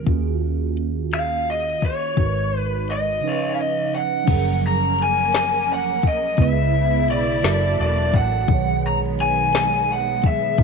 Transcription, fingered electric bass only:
0.07 1.83 D#2 medium
1.83 2.14 F#1 medium
2.18 3.18 G#1 loud
4.28 6.04 F#1 loud
6.04 6.35 B1 medium
6.39 7.09 C#2 loud
7.09 7.40 B1 loud
7.44 7.75 F#1 loud
7.80 8.14 E1 medium
8.14 8.45 A1 medium
8.49 10.24 B1 loud
10.24 10.56 G#1 medium
10.59 10.63 A#1 medium

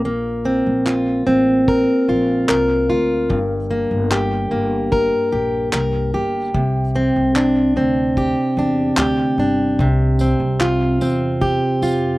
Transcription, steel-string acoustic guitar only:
0.00 0.86 F4 medium
0.05 3.55 A#3 medium
0.45 1.25 C4 medium
0.86 2.08 F4 medium
1.27 3.38 C4 medium
1.68 2.49 A#4 medium
2.09 2.88 F4 medium
2.49 4.92 A#4 medium
2.90 3.38 F4 medium
3.30 6.54 G2 medium
3.71 4.50 A#3 medium
4.11 5.32 G4 medium
4.51 6.63 A#3 soft
4.92 5.72 A#4 medium
5.32 6.14 G4 medium
5.73 6.63 A#4 soft
6.14 7.36 G4 medium
6.54 9.79 C3 medium
6.96 7.76 C4 medium
7.36 8.57 D4 soft
7.77 10.20 C4 soft
8.18 8.99 G4 medium
8.59 9.38 D4 medium
8.99 10.64 G4 medium
9.39 9.88 D4 medium
9.80 12.18 C3 medium
10.21 11.01 C4 medium
10.61 11.82 F4 medium
11.02 12.18 C4 soft
11.41 12.18 G4 medium
11.83 12.18 F4 medium

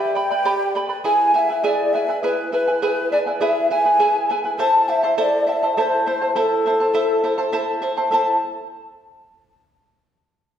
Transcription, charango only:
0.00 0.16 G4 medium
0.00 0.14 B4 medium
0.00 0.15 D5 medium
0.00 0.14 G5 medium
0.00 0.15 B5 medium
0.15 0.31 B4 soft
0.15 0.30 D5 medium
0.15 0.30 G5 soft
0.15 0.29 B5 medium
0.31 0.44 B4 soft
0.31 0.44 D5 soft
0.31 0.45 B5 soft
0.45 0.75 G4 medium
0.45 0.74 B4 medium
0.45 0.75 D5 medium
0.45 0.74 G5 medium
0.45 0.75 B5 medium
0.75 0.89 B4 medium
0.75 0.88 D5 medium
0.75 0.90 G5 medium
0.75 0.88 B5 medium
0.89 1.04 B4 soft
0.89 1.05 D5 soft
0.89 1.04 B5 soft
1.04 1.34 E4 medium
1.04 1.34 G#4 medium
1.04 1.34 B4 medium
1.04 1.33 E5 medium
1.04 1.35 G#5 medium
1.34 1.49 E4 medium
1.34 1.49 B4 medium
1.34 1.49 E5 medium
1.34 1.48 G#5 medium
1.49 1.63 E4 soft
1.49 1.63 B4 soft
1.49 1.63 G#5 medium
1.64 1.93 E4 medium
1.64 1.94 G#4 medium
1.64 1.93 B4 medium
1.64 1.93 E5 medium
1.64 1.94 G#5 medium
1.94 2.09 E4 medium
1.94 2.08 B4 medium
1.94 2.09 E5 medium
1.94 2.07 G#5 medium
2.08 2.23 E4 soft
2.08 2.23 B4 soft
2.08 2.23 G#5 soft
2.23 2.52 E4 medium
2.23 2.53 G#4 medium
2.23 2.52 B4 medium
2.23 2.51 E5 medium
2.23 2.53 G#5 medium
2.52 2.67 E4 medium
2.52 2.67 B4 medium
2.52 2.67 E5 medium
2.52 2.66 G#5 medium
2.67 2.82 E4 soft
2.67 2.81 B4 soft
2.67 2.82 G#5 soft
2.82 3.11 E4 medium
2.82 3.12 G#4 medium
2.82 3.12 B4 medium
2.82 3.11 E5 medium
2.82 3.12 G#5 medium
3.12 3.26 E4 medium
3.12 3.26 B4 medium
3.12 3.27 E5 medium
3.12 3.25 G#5 medium
3.26 3.40 E4 soft
3.26 3.41 B4 soft
3.26 3.41 G#5 soft
3.41 3.70 E4 medium
3.41 3.71 G#4 medium
3.41 3.70 B4 medium
3.41 3.69 E5 medium
3.41 3.71 G#5 medium
3.70 3.85 E4 medium
3.70 3.84 B4 medium
3.70 3.86 E5 medium
3.70 3.84 G#5 medium
3.85 3.98 E4 soft
3.85 3.99 B4 soft
3.85 3.99 G#5 medium
3.99 4.29 E4 medium
3.99 4.30 G#4 medium
3.99 4.29 B4 medium
3.99 4.28 E5 medium
3.99 4.30 G#5 medium
4.29 4.45 E4 medium
4.29 4.44 B4 medium
4.29 4.45 E5 medium
4.29 4.43 G#5 medium
4.44 4.58 E4 soft
4.44 4.58 B4 soft
4.44 4.59 G#5 soft
4.58 4.87 E4 medium
4.58 4.88 A4 medium
4.58 4.88 C5 medium
4.58 4.87 E5 medium
4.58 4.88 A5 medium
4.88 5.03 E4 medium
4.88 5.03 C5 medium
4.88 5.03 E5 medium
4.88 5.02 A5 medium
5.03 5.17 E4 soft
5.03 5.17 C5 soft
5.03 5.17 A5 medium
5.18 5.46 E4 medium
5.18 5.48 A4 medium
5.18 5.47 C5 medium
5.18 5.45 E5 medium
5.18 5.47 A5 medium
5.47 5.62 E4 medium
5.47 5.62 C5 medium
5.47 5.62 E5 medium
5.47 5.61 A5 medium
5.63 5.77 E4 soft
5.63 5.77 C5 soft
5.63 5.77 A5 soft
5.77 6.06 E4 medium
5.77 6.07 A4 medium
5.77 6.06 C5 medium
5.77 6.05 E5 medium
5.77 6.06 A5 medium
6.06 6.22 E4 medium
6.06 6.21 C5 medium
6.06 6.21 E5 medium
6.06 6.20 A5 medium
6.21 6.35 E4 soft
6.21 6.35 C5 soft
6.21 6.35 A5 soft
6.35 6.65 E4 medium
6.35 6.65 A4 medium
6.35 6.66 C5 medium
6.35 6.65 E5 medium
6.35 6.66 A5 medium
6.66 6.80 E4 medium
6.66 6.80 C5 medium
6.66 6.80 E5 medium
6.66 6.79 A5 medium
6.80 6.93 E4 soft
6.80 6.93 C5 soft
6.80 6.94 A5 medium
6.94 7.22 E4 medium
6.94 7.24 A4 medium
6.94 7.23 C5 medium
6.94 7.22 E5 medium
6.94 7.24 A5 medium
7.24 7.38 E4 medium
7.24 7.37 C5 medium
7.24 7.38 E5 medium
7.24 7.37 A5 medium
7.38 7.52 E4 soft
7.38 7.52 C5 soft
7.38 7.53 A5 medium
7.52 7.81 E4 medium
7.52 7.82 A4 medium
7.52 7.81 C5 medium
7.52 7.81 E5 medium
7.52 7.82 A5 medium
7.82 7.97 E4 medium
7.82 7.96 C5 medium
7.82 7.97 E5 medium
7.82 7.96 A5 medium
7.97 8.11 E4 soft
7.97 8.11 C5 soft
7.97 8.12 A5 soft
8.11 8.36 E4 medium
8.11 8.35 A4 medium
8.11 8.36 C5 medium
8.11 8.35 E5 medium
8.11 8.36 A5 medium

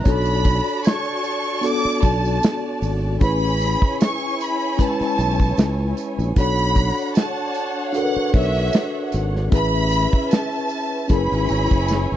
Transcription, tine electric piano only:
0.04 1.04 D4 medium
0.04 1.05 F#4 medium
0.04 1.05 A4 medium
0.04 1.03 C#5 medium
1.61 2.61 B3 medium
1.61 2.61 D4 medium
1.61 2.62 F#4 medium
1.61 2.62 A4 medium
3.20 4.19 C#4 medium
3.20 4.19 E4 medium
3.20 4.20 G#4 medium
3.20 4.20 B4 medium
4.77 5.77 G#3 medium
4.77 5.76 C#4 medium
4.77 5.77 E4 medium
4.77 5.78 B4 medium
6.36 7.34 D4 medium
6.36 7.35 F#4 medium
6.36 7.36 A4 medium
6.36 7.36 C#5 medium
7.92 8.92 D4 medium
7.92 8.93 F#4 medium
7.92 8.93 A4 medium
7.97 8.02 A#4 medium
8.03 8.97 B4 medium
9.50 10.49 C#4 medium
9.50 10.50 E4 medium
9.50 10.50 G#4 medium
9.50 10.51 B4 medium
11.08 12.07 C#4 medium
11.08 12.08 E4 medium
11.08 12.08 G#4 medium
11.08 11.18 A#4 medium
11.18 12.12 B4 medium
11.86 12.17 G#5 medium

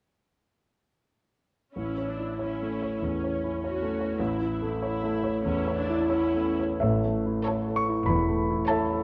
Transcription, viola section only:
1.74 2.05 C#4 soft
1.74 2.36 E4 soft
2.08 2.40 D4 soft
2.41 3.02 C#4 soft
2.41 3.02 E4 soft
3.03 3.61 C#4 soft
3.62 4.18 C#4 soft
3.62 4.19 F#4 soft
4.19 4.79 E4 soft
4.81 5.42 E4 soft
5.44 5.75 C#4 soft
5.44 6.07 E4 soft
5.76 6.09 D4 soft
6.08 6.59 C#4 soft
6.08 6.58 E4 soft
7.47 7.92 E4 soft
8.69 9.03 E4 soft

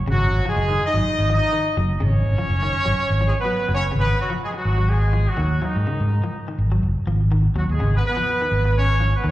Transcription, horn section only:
0.10 0.44 F#3 medium
0.10 0.44 F#4 loud
0.49 0.82 G#3 loud
0.49 0.82 G#4 loud
0.86 1.31 D#4 loud
0.86 1.31 D#5 loud
1.34 1.76 D#4 loud
1.34 1.76 D#5 loud
2.03 3.43 C#4 loud
2.03 3.43 C#5 loud
3.25 3.30 G#3 loud
3.25 3.30 G#4 loud
3.39 3.69 B3 loud
3.39 3.69 B4 loud
3.74 3.84 C#4 loud
3.74 3.84 C#5 loud
3.98 4.18 B3 loud
3.98 4.18 B4 loud
4.20 4.30 F#3 medium
4.20 4.30 F#4 medium
4.44 4.49 G#3 medium
4.44 4.49 G#4 medium
4.56 4.88 F#3 medium
4.56 4.88 F#4 medium
4.89 5.27 G#3 medium
4.89 5.27 G#4 loud
5.28 5.63 F#3 medium
5.28 5.63 F#4 medium
5.64 6.36 D#3 medium
5.64 6.36 D#4 medium
7.58 7.63 F#3 medium
7.58 7.63 F#4 medium
7.70 7.92 G#3 medium
7.70 7.92 G#4 medium
7.96 8.00 B3 medium
7.96 8.00 B4 medium
8.06 8.74 B3 medium
8.06 8.74 B4 loud
8.78 9.12 C#4 loud
8.78 9.12 C#5 loud
9.16 9.25 B3 medium
9.16 9.25 B4 medium
9.27 9.31 C#4 loud
9.27 9.31 C#5 loud

